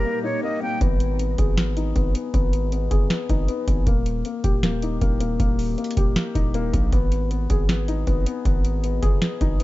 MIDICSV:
0, 0, Header, 1, 6, 480
1, 0, Start_track
1, 0, Key_signature, 5, "minor"
1, 0, Tempo, 382166
1, 1019, Time_signature, 4, 2, 24, 8
1, 12100, End_track
2, 0, Start_track
2, 0, Title_t, "Flute"
2, 0, Program_c, 0, 73
2, 0, Note_on_c, 0, 70, 79
2, 277, Note_off_c, 0, 70, 0
2, 301, Note_on_c, 0, 73, 86
2, 513, Note_off_c, 0, 73, 0
2, 542, Note_on_c, 0, 75, 79
2, 754, Note_off_c, 0, 75, 0
2, 780, Note_on_c, 0, 79, 83
2, 993, Note_off_c, 0, 79, 0
2, 12100, End_track
3, 0, Start_track
3, 0, Title_t, "Ambient pad"
3, 0, Program_c, 1, 92
3, 0, Note_on_c, 1, 46, 76
3, 0, Note_on_c, 1, 55, 69
3, 0, Note_on_c, 1, 63, 68
3, 0, Note_on_c, 1, 82, 83
3, 967, Note_off_c, 1, 63, 0
3, 967, Note_off_c, 1, 82, 0
3, 980, Note_off_c, 1, 46, 0
3, 980, Note_off_c, 1, 55, 0
3, 12100, End_track
4, 0, Start_track
4, 0, Title_t, "Felt piano"
4, 0, Program_c, 2, 0
4, 0, Control_c, 2, 64, 127
4, 0, Note_on_c, 2, 58, 73
4, 0, Note_on_c, 2, 63, 65
4, 0, Note_on_c, 2, 67, 91
4, 63, Note_off_c, 2, 58, 0
4, 63, Note_on_c, 2, 58, 72
4, 296, Note_off_c, 2, 63, 0
4, 296, Note_on_c, 2, 63, 80
4, 521, Note_off_c, 2, 58, 0
4, 540, Note_on_c, 2, 58, 90
4, 760, Note_off_c, 2, 58, 0
4, 778, Note_on_c, 2, 58, 73
4, 1017, Note_off_c, 2, 63, 0
4, 1018, Note_off_c, 2, 58, 0
4, 1019, Note_on_c, 2, 59, 91
4, 1022, Note_off_c, 2, 67, 0
4, 1035, Control_c, 2, 64, 0
4, 1257, Control_c, 2, 64, 127
4, 1480, Note_off_c, 2, 59, 0
4, 1499, Note_on_c, 2, 59, 76
4, 1743, Note_on_c, 2, 68, 87
4, 1962, Note_off_c, 2, 59, 0
4, 1981, Note_on_c, 2, 59, 68
4, 2221, Note_on_c, 2, 63, 73
4, 2442, Note_off_c, 2, 59, 0
4, 2461, Note_on_c, 2, 59, 83
4, 2679, Note_off_c, 2, 59, 0
4, 2698, Note_on_c, 2, 59, 75
4, 2922, Note_off_c, 2, 59, 0
4, 2940, Note_off_c, 2, 68, 0
4, 2941, Note_on_c, 2, 59, 88
4, 3403, Note_off_c, 2, 59, 0
4, 3419, Note_off_c, 2, 63, 0
4, 3422, Note_on_c, 2, 59, 73
4, 3652, Note_on_c, 2, 68, 95
4, 3878, Note_off_c, 2, 59, 0
4, 3897, Note_on_c, 2, 59, 68
4, 4140, Note_on_c, 2, 63, 80
4, 4358, Note_off_c, 2, 59, 0
4, 4377, Note_on_c, 2, 59, 92
4, 4591, Note_off_c, 2, 59, 0
4, 4610, Note_on_c, 2, 59, 69
4, 4854, Note_off_c, 2, 59, 0
4, 4855, Note_off_c, 2, 68, 0
4, 4859, Note_off_c, 2, 63, 0
4, 4860, Note_on_c, 2, 58, 87
4, 4876, Control_c, 2, 64, 0
4, 5070, Control_c, 2, 64, 127
4, 5324, Note_off_c, 2, 58, 0
4, 5343, Note_on_c, 2, 58, 68
4, 5580, Note_on_c, 2, 67, 94
4, 5804, Note_off_c, 2, 58, 0
4, 5823, Note_on_c, 2, 58, 72
4, 6063, Note_on_c, 2, 63, 65
4, 6280, Note_off_c, 2, 58, 0
4, 6299, Note_on_c, 2, 58, 92
4, 6518, Note_off_c, 2, 58, 0
4, 6537, Note_on_c, 2, 58, 82
4, 6761, Note_off_c, 2, 58, 0
4, 6779, Note_off_c, 2, 67, 0
4, 6780, Note_on_c, 2, 58, 91
4, 7241, Note_off_c, 2, 58, 0
4, 7260, Note_on_c, 2, 58, 74
4, 7261, Note_off_c, 2, 63, 0
4, 7504, Note_on_c, 2, 67, 94
4, 7722, Note_off_c, 2, 58, 0
4, 7741, Note_on_c, 2, 58, 71
4, 7973, Note_on_c, 2, 63, 82
4, 8201, Note_off_c, 2, 58, 0
4, 8220, Note_on_c, 2, 58, 89
4, 8439, Note_off_c, 2, 58, 0
4, 8458, Note_on_c, 2, 58, 74
4, 8696, Note_off_c, 2, 63, 0
4, 8698, Note_off_c, 2, 58, 0
4, 8699, Note_on_c, 2, 59, 91
4, 8701, Note_off_c, 2, 67, 0
4, 8713, Control_c, 2, 64, 0
4, 8897, Control_c, 2, 64, 127
4, 9159, Note_off_c, 2, 59, 0
4, 9178, Note_on_c, 2, 59, 75
4, 9420, Note_on_c, 2, 68, 88
4, 9640, Note_off_c, 2, 59, 0
4, 9658, Note_on_c, 2, 59, 68
4, 9899, Note_on_c, 2, 63, 73
4, 10120, Note_off_c, 2, 59, 0
4, 10139, Note_on_c, 2, 59, 86
4, 10360, Note_off_c, 2, 59, 0
4, 10379, Note_on_c, 2, 59, 79
4, 10605, Note_off_c, 2, 59, 0
4, 10619, Note_off_c, 2, 68, 0
4, 10624, Note_on_c, 2, 59, 86
4, 11087, Note_off_c, 2, 59, 0
4, 11099, Note_off_c, 2, 63, 0
4, 11106, Note_on_c, 2, 59, 73
4, 11335, Note_on_c, 2, 68, 97
4, 11562, Note_off_c, 2, 59, 0
4, 11581, Note_on_c, 2, 59, 67
4, 11821, Note_on_c, 2, 63, 80
4, 12042, Note_off_c, 2, 59, 0
4, 12061, Note_on_c, 2, 59, 89
4, 12100, Note_off_c, 2, 59, 0
4, 12100, Note_off_c, 2, 63, 0
4, 12100, Note_off_c, 2, 68, 0
4, 12100, End_track
5, 0, Start_track
5, 0, Title_t, "808-style bass"
5, 0, Program_c, 3, 38
5, 1019, Note_on_c, 3, 32, 107
5, 1710, Note_off_c, 3, 32, 0
5, 1739, Note_on_c, 3, 32, 103
5, 2430, Note_off_c, 3, 32, 0
5, 2459, Note_on_c, 3, 32, 106
5, 2689, Note_off_c, 3, 32, 0
5, 2938, Note_on_c, 3, 32, 114
5, 3629, Note_off_c, 3, 32, 0
5, 3658, Note_on_c, 3, 31, 100
5, 3889, Note_off_c, 3, 31, 0
5, 4139, Note_on_c, 3, 32, 102
5, 4369, Note_off_c, 3, 32, 0
5, 4617, Note_on_c, 3, 32, 104
5, 4848, Note_off_c, 3, 32, 0
5, 4857, Note_on_c, 3, 27, 110
5, 5318, Note_off_c, 3, 27, 0
5, 5579, Note_on_c, 3, 27, 98
5, 6270, Note_off_c, 3, 27, 0
5, 6299, Note_on_c, 3, 27, 106
5, 6759, Note_off_c, 3, 27, 0
5, 6778, Note_on_c, 3, 27, 112
5, 7239, Note_off_c, 3, 27, 0
5, 7499, Note_on_c, 3, 27, 101
5, 7729, Note_off_c, 3, 27, 0
5, 7979, Note_on_c, 3, 27, 102
5, 8439, Note_off_c, 3, 27, 0
5, 8458, Note_on_c, 3, 34, 102
5, 8688, Note_off_c, 3, 34, 0
5, 8698, Note_on_c, 3, 32, 113
5, 9389, Note_off_c, 3, 32, 0
5, 9419, Note_on_c, 3, 32, 101
5, 10110, Note_off_c, 3, 32, 0
5, 10139, Note_on_c, 3, 32, 108
5, 10369, Note_off_c, 3, 32, 0
5, 10618, Note_on_c, 3, 32, 114
5, 11310, Note_off_c, 3, 32, 0
5, 11339, Note_on_c, 3, 31, 105
5, 11569, Note_off_c, 3, 31, 0
5, 11819, Note_on_c, 3, 32, 104
5, 12049, Note_off_c, 3, 32, 0
5, 12100, End_track
6, 0, Start_track
6, 0, Title_t, "Drums"
6, 1018, Note_on_c, 9, 42, 77
6, 1019, Note_on_c, 9, 36, 114
6, 1144, Note_off_c, 9, 36, 0
6, 1144, Note_off_c, 9, 42, 0
6, 1259, Note_on_c, 9, 42, 73
6, 1385, Note_off_c, 9, 42, 0
6, 1499, Note_on_c, 9, 42, 75
6, 1625, Note_off_c, 9, 42, 0
6, 1738, Note_on_c, 9, 42, 86
6, 1740, Note_on_c, 9, 36, 99
6, 1863, Note_off_c, 9, 42, 0
6, 1865, Note_off_c, 9, 36, 0
6, 1978, Note_on_c, 9, 38, 123
6, 1978, Note_on_c, 9, 42, 75
6, 2103, Note_off_c, 9, 42, 0
6, 2104, Note_off_c, 9, 38, 0
6, 2220, Note_on_c, 9, 42, 72
6, 2346, Note_off_c, 9, 42, 0
6, 2458, Note_on_c, 9, 42, 66
6, 2459, Note_on_c, 9, 36, 93
6, 2583, Note_off_c, 9, 42, 0
6, 2584, Note_off_c, 9, 36, 0
6, 2699, Note_on_c, 9, 42, 99
6, 2825, Note_off_c, 9, 42, 0
6, 2938, Note_on_c, 9, 36, 113
6, 2938, Note_on_c, 9, 42, 73
6, 3064, Note_off_c, 9, 36, 0
6, 3064, Note_off_c, 9, 42, 0
6, 3179, Note_on_c, 9, 42, 72
6, 3304, Note_off_c, 9, 42, 0
6, 3418, Note_on_c, 9, 42, 70
6, 3544, Note_off_c, 9, 42, 0
6, 3656, Note_on_c, 9, 42, 85
6, 3659, Note_on_c, 9, 36, 102
6, 3782, Note_off_c, 9, 42, 0
6, 3784, Note_off_c, 9, 36, 0
6, 3896, Note_on_c, 9, 38, 121
6, 3896, Note_on_c, 9, 42, 72
6, 4022, Note_off_c, 9, 38, 0
6, 4022, Note_off_c, 9, 42, 0
6, 4138, Note_on_c, 9, 42, 77
6, 4139, Note_on_c, 9, 36, 92
6, 4264, Note_off_c, 9, 36, 0
6, 4264, Note_off_c, 9, 42, 0
6, 4376, Note_on_c, 9, 42, 71
6, 4501, Note_off_c, 9, 42, 0
6, 4617, Note_on_c, 9, 36, 98
6, 4618, Note_on_c, 9, 42, 94
6, 4743, Note_off_c, 9, 36, 0
6, 4743, Note_off_c, 9, 42, 0
6, 4857, Note_on_c, 9, 36, 110
6, 4857, Note_on_c, 9, 42, 78
6, 4982, Note_off_c, 9, 42, 0
6, 4983, Note_off_c, 9, 36, 0
6, 5098, Note_on_c, 9, 42, 74
6, 5224, Note_off_c, 9, 42, 0
6, 5337, Note_on_c, 9, 42, 74
6, 5463, Note_off_c, 9, 42, 0
6, 5577, Note_on_c, 9, 42, 89
6, 5579, Note_on_c, 9, 36, 99
6, 5702, Note_off_c, 9, 42, 0
6, 5704, Note_off_c, 9, 36, 0
6, 5817, Note_on_c, 9, 42, 72
6, 5818, Note_on_c, 9, 38, 125
6, 5943, Note_off_c, 9, 38, 0
6, 5943, Note_off_c, 9, 42, 0
6, 6059, Note_on_c, 9, 42, 71
6, 6185, Note_off_c, 9, 42, 0
6, 6297, Note_on_c, 9, 42, 67
6, 6299, Note_on_c, 9, 36, 96
6, 6423, Note_off_c, 9, 42, 0
6, 6424, Note_off_c, 9, 36, 0
6, 6538, Note_on_c, 9, 42, 101
6, 6663, Note_off_c, 9, 42, 0
6, 6778, Note_on_c, 9, 36, 110
6, 6778, Note_on_c, 9, 42, 78
6, 6904, Note_off_c, 9, 36, 0
6, 6904, Note_off_c, 9, 42, 0
6, 7020, Note_on_c, 9, 46, 73
6, 7145, Note_off_c, 9, 46, 0
6, 7259, Note_on_c, 9, 42, 46
6, 7339, Note_off_c, 9, 42, 0
6, 7339, Note_on_c, 9, 42, 62
6, 7418, Note_off_c, 9, 42, 0
6, 7418, Note_on_c, 9, 42, 76
6, 7498, Note_off_c, 9, 42, 0
6, 7498, Note_on_c, 9, 42, 86
6, 7499, Note_on_c, 9, 36, 103
6, 7623, Note_off_c, 9, 42, 0
6, 7625, Note_off_c, 9, 36, 0
6, 7737, Note_on_c, 9, 42, 76
6, 7738, Note_on_c, 9, 38, 117
6, 7863, Note_off_c, 9, 38, 0
6, 7863, Note_off_c, 9, 42, 0
6, 7979, Note_on_c, 9, 36, 93
6, 7979, Note_on_c, 9, 42, 77
6, 8105, Note_off_c, 9, 36, 0
6, 8105, Note_off_c, 9, 42, 0
6, 8218, Note_on_c, 9, 42, 72
6, 8343, Note_off_c, 9, 42, 0
6, 8458, Note_on_c, 9, 36, 97
6, 8459, Note_on_c, 9, 42, 90
6, 8584, Note_off_c, 9, 36, 0
6, 8584, Note_off_c, 9, 42, 0
6, 8698, Note_on_c, 9, 36, 113
6, 8698, Note_on_c, 9, 42, 76
6, 8823, Note_off_c, 9, 42, 0
6, 8824, Note_off_c, 9, 36, 0
6, 8939, Note_on_c, 9, 42, 75
6, 9065, Note_off_c, 9, 42, 0
6, 9179, Note_on_c, 9, 42, 70
6, 9305, Note_off_c, 9, 42, 0
6, 9418, Note_on_c, 9, 42, 85
6, 9419, Note_on_c, 9, 36, 98
6, 9543, Note_off_c, 9, 42, 0
6, 9545, Note_off_c, 9, 36, 0
6, 9658, Note_on_c, 9, 42, 74
6, 9659, Note_on_c, 9, 38, 121
6, 9784, Note_off_c, 9, 38, 0
6, 9784, Note_off_c, 9, 42, 0
6, 9900, Note_on_c, 9, 42, 72
6, 10026, Note_off_c, 9, 42, 0
6, 10137, Note_on_c, 9, 42, 66
6, 10139, Note_on_c, 9, 36, 94
6, 10263, Note_off_c, 9, 42, 0
6, 10264, Note_off_c, 9, 36, 0
6, 10379, Note_on_c, 9, 42, 100
6, 10505, Note_off_c, 9, 42, 0
6, 10618, Note_on_c, 9, 36, 114
6, 10619, Note_on_c, 9, 42, 78
6, 10744, Note_off_c, 9, 36, 0
6, 10744, Note_off_c, 9, 42, 0
6, 10859, Note_on_c, 9, 42, 73
6, 10985, Note_off_c, 9, 42, 0
6, 11099, Note_on_c, 9, 42, 73
6, 11224, Note_off_c, 9, 42, 0
6, 11337, Note_on_c, 9, 42, 85
6, 11339, Note_on_c, 9, 36, 101
6, 11462, Note_off_c, 9, 42, 0
6, 11465, Note_off_c, 9, 36, 0
6, 11576, Note_on_c, 9, 42, 75
6, 11577, Note_on_c, 9, 38, 125
6, 11702, Note_off_c, 9, 38, 0
6, 11702, Note_off_c, 9, 42, 0
6, 11818, Note_on_c, 9, 42, 74
6, 11819, Note_on_c, 9, 36, 98
6, 11944, Note_off_c, 9, 42, 0
6, 11945, Note_off_c, 9, 36, 0
6, 12057, Note_on_c, 9, 42, 72
6, 12100, Note_off_c, 9, 42, 0
6, 12100, End_track
0, 0, End_of_file